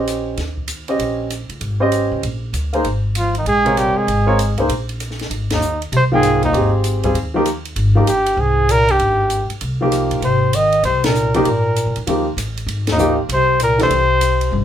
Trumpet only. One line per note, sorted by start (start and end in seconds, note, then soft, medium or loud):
3.18 3.35 F4 medium
3.38 3.47 D#4 medium
3.47 3.79 G#4 loud
3.78 3.98 G4 medium
3.97 4.58 G#4 medium
5.54 5.81 D#4 medium
5.96 6.04 C5 medium
6.14 6.42 G#4 loud
6.44 6.72 D#4 medium
8.08 8.42 G4 medium
8.40 8.73 G#4 loud
8.71 8.92 A#4 loud
8.91 9.51 G4 medium
10.24 10.57 C5 medium
10.55 10.84 D#5 loud
10.85 11.07 C5 loud
11.05 11.35 A#4 medium
11.48 12.04 A#4 medium
12.92 13.18 D#4 medium
13.33 13.60 C5 loud
13.63 13.80 A#4 loud
13.83 14.65 C5 loud